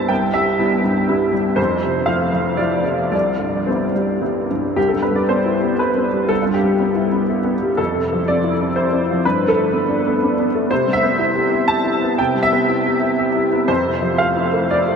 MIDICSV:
0, 0, Header, 1, 2, 480
1, 0, Start_track
1, 0, Key_signature, 0, "major"
1, 0, Tempo, 495868
1, 100, Time_signature, 3, 2, 24, 8
1, 2501, Tempo, 546448
1, 4421, Tempo, 510204
1, 5861, Tempo, 489796
1, 11141, Tempo, 500835
1, 13541, Tempo, 525855
1, 14241, End_track
2, 0, Start_track
2, 0, Title_t, "Upright piano"
2, 0, Program_c, 0, 0
2, 0, Control_c, 0, 64, 127
2, 0, Note_on_c, 0, 36, 47
2, 0, Note_on_c, 0, 43, 36
2, 0, Note_on_c, 0, 55, 34
2, 0, Note_on_c, 0, 59, 35
2, 0, Note_on_c, 0, 64, 38
2, 0, Note_on_c, 0, 72, 68
2, 0, Note_on_c, 0, 76, 78
2, 0, Note_on_c, 0, 81, 78
2, 81, Note_on_c, 0, 79, 68
2, 88, Note_off_c, 0, 36, 0
2, 88, Note_on_c, 0, 36, 52
2, 117, Control_c, 0, 64, 0
2, 121, Note_off_c, 0, 55, 0
2, 124, Note_off_c, 0, 64, 0
2, 124, Note_off_c, 0, 76, 0
2, 126, Note_off_c, 0, 59, 0
2, 126, Note_off_c, 0, 72, 0
2, 126, Note_off_c, 0, 81, 0
2, 239, Note_off_c, 0, 43, 0
2, 277, Control_c, 0, 64, 127
2, 325, Note_on_c, 0, 76, 77
2, 327, Note_off_c, 0, 79, 0
2, 327, Note_on_c, 0, 55, 38
2, 554, Note_off_c, 0, 55, 0
2, 569, Note_on_c, 0, 55, 35
2, 570, Note_on_c, 0, 59, 37
2, 581, Note_on_c, 0, 64, 38
2, 783, Note_off_c, 0, 55, 0
2, 784, Note_off_c, 0, 59, 0
2, 790, Note_off_c, 0, 64, 0
2, 814, Note_on_c, 0, 43, 41
2, 1052, Note_on_c, 0, 59, 36
2, 1053, Note_on_c, 0, 55, 38
2, 1058, Note_on_c, 0, 64, 40
2, 1196, Note_off_c, 0, 43, 0
2, 1267, Note_off_c, 0, 59, 0
2, 1268, Note_off_c, 0, 55, 0
2, 1271, Note_off_c, 0, 64, 0
2, 1283, Note_on_c, 0, 55, 37
2, 1483, Note_off_c, 0, 36, 0
2, 1510, Note_on_c, 0, 72, 72
2, 1515, Note_on_c, 0, 41, 51
2, 1522, Note_off_c, 0, 76, 0
2, 1524, Note_off_c, 0, 55, 0
2, 1547, Control_c, 0, 64, 0
2, 1699, Control_c, 0, 64, 127
2, 1768, Note_on_c, 0, 48, 36
2, 1993, Note_on_c, 0, 77, 66
2, 1995, Note_on_c, 0, 53, 33
2, 1995, Note_on_c, 0, 57, 34
2, 1996, Note_off_c, 0, 72, 0
2, 2006, Note_on_c, 0, 64, 37
2, 2153, Note_off_c, 0, 48, 0
2, 2220, Note_off_c, 0, 53, 0
2, 2220, Note_off_c, 0, 57, 0
2, 2226, Note_off_c, 0, 64, 0
2, 2248, Note_on_c, 0, 53, 36
2, 2480, Note_off_c, 0, 53, 0
2, 2489, Note_on_c, 0, 74, 65
2, 2495, Note_off_c, 0, 77, 0
2, 2495, Note_on_c, 0, 53, 30
2, 2498, Note_on_c, 0, 57, 30
2, 2503, Note_on_c, 0, 64, 36
2, 2710, Note_off_c, 0, 53, 0
2, 2712, Note_off_c, 0, 57, 0
2, 2714, Note_off_c, 0, 64, 0
2, 2727, Note_on_c, 0, 48, 31
2, 2942, Note_off_c, 0, 41, 0
2, 2955, Note_off_c, 0, 74, 0
2, 2968, Note_on_c, 0, 74, 55
2, 2970, Note_on_c, 0, 36, 38
2, 2978, Note_off_c, 0, 48, 0
2, 3002, Control_c, 0, 64, 0
2, 3141, Control_c, 0, 64, 127
2, 3213, Note_on_c, 0, 43, 32
2, 3454, Note_on_c, 0, 72, 41
2, 3458, Note_on_c, 0, 55, 28
2, 3461, Note_on_c, 0, 59, 28
2, 3467, Note_off_c, 0, 74, 0
2, 3468, Note_on_c, 0, 64, 30
2, 3608, Note_off_c, 0, 43, 0
2, 3680, Note_off_c, 0, 55, 0
2, 3681, Note_off_c, 0, 59, 0
2, 3685, Note_off_c, 0, 64, 0
2, 3697, Note_on_c, 0, 55, 30
2, 3924, Note_off_c, 0, 55, 0
2, 3937, Note_on_c, 0, 55, 26
2, 3938, Note_on_c, 0, 59, 27
2, 3942, Note_on_c, 0, 64, 29
2, 4159, Note_off_c, 0, 55, 0
2, 4159, Note_off_c, 0, 59, 0
2, 4161, Note_off_c, 0, 64, 0
2, 4180, Note_off_c, 0, 72, 0
2, 4188, Note_on_c, 0, 43, 29
2, 4379, Note_off_c, 0, 36, 0
2, 4416, Note_on_c, 0, 67, 67
2, 4419, Note_off_c, 0, 43, 0
2, 4422, Note_on_c, 0, 36, 42
2, 4437, Control_c, 0, 64, 0
2, 4528, Note_on_c, 0, 69, 47
2, 4537, Note_off_c, 0, 67, 0
2, 4576, Note_on_c, 0, 43, 31
2, 4586, Control_c, 0, 64, 127
2, 4654, Note_off_c, 0, 69, 0
2, 4660, Note_on_c, 0, 71, 51
2, 4739, Note_on_c, 0, 55, 33
2, 4780, Note_off_c, 0, 71, 0
2, 4784, Note_on_c, 0, 74, 52
2, 4835, Note_off_c, 0, 43, 0
2, 4903, Note_off_c, 0, 74, 0
2, 4909, Note_on_c, 0, 72, 65
2, 4912, Note_on_c, 0, 59, 32
2, 4998, Note_off_c, 0, 55, 0
2, 5066, Note_on_c, 0, 64, 36
2, 5165, Note_off_c, 0, 59, 0
2, 5232, Note_on_c, 0, 59, 34
2, 5322, Note_off_c, 0, 64, 0
2, 5383, Note_on_c, 0, 71, 63
2, 5387, Note_on_c, 0, 64, 35
2, 5389, Note_off_c, 0, 72, 0
2, 5484, Note_off_c, 0, 59, 0
2, 5547, Note_on_c, 0, 59, 31
2, 5641, Note_off_c, 0, 64, 0
2, 5701, Note_on_c, 0, 55, 32
2, 5799, Note_off_c, 0, 59, 0
2, 5824, Note_off_c, 0, 36, 0
2, 5848, Note_on_c, 0, 69, 75
2, 5851, Note_on_c, 0, 36, 41
2, 5859, Note_off_c, 0, 71, 0
2, 5880, Control_c, 0, 64, 0
2, 5957, Note_off_c, 0, 55, 0
2, 5976, Note_off_c, 0, 69, 0
2, 5979, Note_on_c, 0, 65, 45
2, 6022, Note_on_c, 0, 43, 33
2, 6049, Control_c, 0, 64, 127
2, 6094, Note_on_c, 0, 67, 65
2, 6103, Note_off_c, 0, 65, 0
2, 6187, Note_on_c, 0, 55, 34
2, 6285, Note_off_c, 0, 43, 0
2, 6345, Note_on_c, 0, 59, 34
2, 6448, Note_off_c, 0, 55, 0
2, 6504, Note_on_c, 0, 64, 37
2, 6607, Note_off_c, 0, 59, 0
2, 6664, Note_on_c, 0, 59, 37
2, 6766, Note_off_c, 0, 64, 0
2, 6823, Note_on_c, 0, 64, 36
2, 6927, Note_off_c, 0, 59, 0
2, 6982, Note_on_c, 0, 59, 34
2, 7071, Note_off_c, 0, 67, 0
2, 7087, Note_off_c, 0, 64, 0
2, 7151, Note_on_c, 0, 55, 33
2, 7247, Note_off_c, 0, 59, 0
2, 7274, Note_off_c, 0, 36, 0
2, 7305, Note_on_c, 0, 69, 64
2, 7309, Note_on_c, 0, 41, 44
2, 7315, Note_off_c, 0, 55, 0
2, 7334, Control_c, 0, 64, 0
2, 7480, Note_on_c, 0, 48, 33
2, 7512, Control_c, 0, 64, 127
2, 7648, Note_on_c, 0, 53, 37
2, 7732, Note_off_c, 0, 48, 0
2, 7787, Note_off_c, 0, 69, 0
2, 7800, Note_on_c, 0, 74, 72
2, 7804, Note_on_c, 0, 60, 37
2, 7893, Note_off_c, 0, 53, 0
2, 7958, Note_on_c, 0, 64, 40
2, 8050, Note_off_c, 0, 60, 0
2, 8117, Note_on_c, 0, 60, 39
2, 8208, Note_off_c, 0, 64, 0
2, 8271, Note_off_c, 0, 74, 0
2, 8271, Note_on_c, 0, 72, 59
2, 8273, Note_on_c, 0, 64, 40
2, 8369, Note_off_c, 0, 60, 0
2, 8432, Note_on_c, 0, 60, 37
2, 8526, Note_off_c, 0, 64, 0
2, 8610, Note_on_c, 0, 53, 38
2, 8684, Note_off_c, 0, 60, 0
2, 8701, Note_off_c, 0, 41, 0
2, 8747, Note_off_c, 0, 72, 0
2, 8755, Note_on_c, 0, 71, 74
2, 8756, Note_off_c, 0, 53, 0
2, 8759, Note_on_c, 0, 43, 48
2, 8761, Control_c, 0, 64, 0
2, 8919, Note_on_c, 0, 50, 37
2, 8943, Control_c, 0, 64, 127
2, 8979, Note_on_c, 0, 69, 68
2, 8987, Note_off_c, 0, 71, 0
2, 9061, Note_on_c, 0, 57, 40
2, 9166, Note_off_c, 0, 50, 0
2, 9223, Note_on_c, 0, 59, 38
2, 9320, Note_off_c, 0, 57, 0
2, 9372, Note_on_c, 0, 62, 41
2, 9483, Note_off_c, 0, 59, 0
2, 9554, Note_on_c, 0, 59, 40
2, 9637, Note_off_c, 0, 62, 0
2, 9711, Note_on_c, 0, 62, 42
2, 9806, Note_off_c, 0, 59, 0
2, 9872, Note_on_c, 0, 59, 41
2, 9944, Note_off_c, 0, 69, 0
2, 9962, Note_off_c, 0, 62, 0
2, 10028, Note_on_c, 0, 57, 42
2, 10120, Note_off_c, 0, 59, 0
2, 10148, Note_off_c, 0, 43, 0
2, 10179, Note_on_c, 0, 72, 76
2, 10183, Note_off_c, 0, 57, 0
2, 10190, Note_on_c, 0, 48, 52
2, 10197, Control_c, 0, 64, 0
2, 10325, Control_c, 0, 64, 127
2, 10337, Note_on_c, 0, 55, 38
2, 10399, Note_on_c, 0, 76, 85
2, 10416, Note_off_c, 0, 72, 0
2, 10497, Note_on_c, 0, 59, 42
2, 10591, Note_off_c, 0, 55, 0
2, 10653, Note_on_c, 0, 64, 43
2, 10752, Note_off_c, 0, 59, 0
2, 10815, Note_on_c, 0, 67, 46
2, 10912, Note_off_c, 0, 64, 0
2, 10974, Note_on_c, 0, 64, 44
2, 11076, Note_off_c, 0, 67, 0
2, 11130, Note_on_c, 0, 81, 90
2, 11133, Note_off_c, 0, 76, 0
2, 11138, Note_on_c, 0, 67, 45
2, 11235, Note_off_c, 0, 64, 0
2, 11290, Note_on_c, 0, 64, 41
2, 11395, Note_off_c, 0, 67, 0
2, 11459, Note_on_c, 0, 59, 41
2, 11550, Note_off_c, 0, 64, 0
2, 11585, Note_off_c, 0, 48, 0
2, 11613, Note_off_c, 0, 81, 0
2, 11615, Note_on_c, 0, 48, 56
2, 11616, Note_on_c, 0, 79, 73
2, 11638, Control_c, 0, 64, 0
2, 11712, Note_off_c, 0, 59, 0
2, 11764, Control_c, 0, 64, 127
2, 11773, Note_on_c, 0, 55, 39
2, 11849, Note_on_c, 0, 76, 89
2, 11854, Note_off_c, 0, 79, 0
2, 11941, Note_on_c, 0, 59, 47
2, 12028, Note_off_c, 0, 55, 0
2, 12101, Note_on_c, 0, 64, 42
2, 12193, Note_off_c, 0, 59, 0
2, 12262, Note_on_c, 0, 67, 44
2, 12354, Note_off_c, 0, 64, 0
2, 12412, Note_on_c, 0, 64, 42
2, 12516, Note_off_c, 0, 67, 0
2, 12580, Note_on_c, 0, 67, 45
2, 12673, Note_off_c, 0, 64, 0
2, 12744, Note_on_c, 0, 64, 41
2, 12838, Note_off_c, 0, 67, 0
2, 12904, Note_on_c, 0, 59, 41
2, 13000, Note_off_c, 0, 64, 0
2, 13021, Note_off_c, 0, 48, 0
2, 13050, Note_on_c, 0, 72, 75
2, 13052, Note_on_c, 0, 41, 50
2, 13057, Note_off_c, 0, 76, 0
2, 13063, Note_off_c, 0, 59, 0
2, 13078, Control_c, 0, 64, 0
2, 13209, Note_on_c, 0, 48, 36
2, 13252, Control_c, 0, 64, 127
2, 13373, Note_on_c, 0, 53, 40
2, 13471, Note_off_c, 0, 48, 0
2, 13533, Note_on_c, 0, 77, 73
2, 13536, Note_off_c, 0, 72, 0
2, 13541, Note_on_c, 0, 57, 39
2, 13631, Note_off_c, 0, 53, 0
2, 13699, Note_on_c, 0, 64, 40
2, 13791, Note_off_c, 0, 57, 0
2, 13851, Note_on_c, 0, 57, 40
2, 13950, Note_off_c, 0, 64, 0
2, 14010, Note_off_c, 0, 77, 0
2, 14011, Note_on_c, 0, 74, 70
2, 14016, Note_on_c, 0, 64, 38
2, 14110, Note_off_c, 0, 57, 0
2, 14167, Note_on_c, 0, 57, 35
2, 14241, Note_off_c, 0, 41, 0
2, 14241, Note_off_c, 0, 57, 0
2, 14241, Note_off_c, 0, 64, 0
2, 14241, Note_off_c, 0, 74, 0
2, 14241, End_track
0, 0, End_of_file